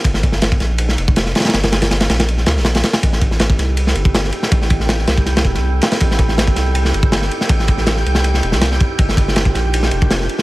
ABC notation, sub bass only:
X:1
M:4/4
L:1/16
Q:1/4=161
K:Aphr
V:1 name="Sub bass" clef=bass
G,,,6 B,,,4 F,,,4 z2 | G,,,6 B,,,4 D,, B,,,3 z2 | A,,,6 C,,4 G,,,4 z2 | A,,,6 C,,4 E,,, C,,3 z2 |
A,,,6 C,,4 G,,,4 z2 | A,,,6 C,,4 E,,, C,,3 z2 | G,,,6 B,,,4 F,,,4 z2 |]